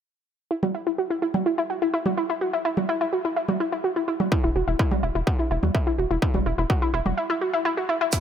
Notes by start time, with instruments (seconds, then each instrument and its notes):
0.51 synth arpeggio sound E4
0.63 synth arpeggio sound F#4, low conga
0.75 synth arpeggio sound E4
0.87 synth arpeggio sound E4
0.98 synth arpeggio sound F#4
1.10 synth arpeggio sound E4
1.22 synth arpeggio sound E4
1.34 synth arpeggio sound F#4, low conga
1.46 synth arpeggio sound E4
1.58 synth arpeggio sound E4
1.70 synth arpeggio sound F#4
1.82 synth arpeggio sound E4
1.94 synth arpeggio sound E4
2.06 synth arpeggio sound F#4, low conga
2.17 synth arpeggio sound E4
2.30 synth arpeggio sound E4
2.41 synth arpeggio sound F#4
2.53 synth arpeggio sound E4
2.65 synth arpeggio sound E4
2.77 synth arpeggio sound F#4, low conga
2.89 synth arpeggio sound E4
3.01 synth arpeggio sound E4
3.13 synth arpeggio sound F#4
3.25 synth arpeggio sound E4
3.36 synth arpeggio sound E4
3.49 synth arpeggio sound F#4, low conga
3.60 synth arpeggio sound E4
3.72 synth arpeggio sound E4
3.84 synth arpeggio sound F#4
3.96 synth arpeggio sound E4
4.08 synth arpeggio sound E4
4.20 synth arpeggio sound F#4, low conga
4.32 synth arpeggio sound E4, kick
4.44 analog synth bass E1, synth arpeggio sound E4
4.56 analog synth bass E1, synth arpeggio sound F#4
4.68 analog synth bass E1, synth arpeggio sound E4
4.79 synth arpeggio sound E4, kick
4.91 synth arpeggio sound F#4, low conga
5.03 analog synth bass E1, synth arpeggio sound E4
5.15 analog synth bass E1, synth arpeggio sound E4
5.27 synth arpeggio sound F#4, kick
5.39 synth arpeggio sound E4
5.51 analog synth bass E1, synth arpeggio sound E4
5.63 analog synth bass E2, synth arpeggio sound F#4, low conga
5.75 synth arpeggio sound E4, kick
5.87 synth arpeggio sound E4
5.98 analog synth bass E1, synth arpeggio sound F#4
6.11 analog synth bass E1, synth arpeggio sound E4
6.22 synth arpeggio sound E4, kick
6.34 analog synth bass E1, synth arpeggio sound F#4, low conga
6.46 analog synth bass E1, synth arpeggio sound E4
6.58 analog synth bass E1, synth arpeggio sound E4
6.70 synth arpeggio sound F#4, kick
6.82 synth arpeggio sound E4
6.94 analog synth bass E1, synth arpeggio sound E4
7.06 analog synth bass E1, synth arpeggio sound F#4, low conga
7.17 synth arpeggio sound E4
7.30 synth arpeggio sound E4
7.41 synth arpeggio sound F#4
7.53 synth arpeggio sound E4
7.65 synth arpeggio sound E4
7.77 synth arpeggio sound F#4
7.89 synth arpeggio sound E4
8.01 synth arpeggio sound E4
8.12 synth arpeggio sound E4, kick, closed hi-hat, shaker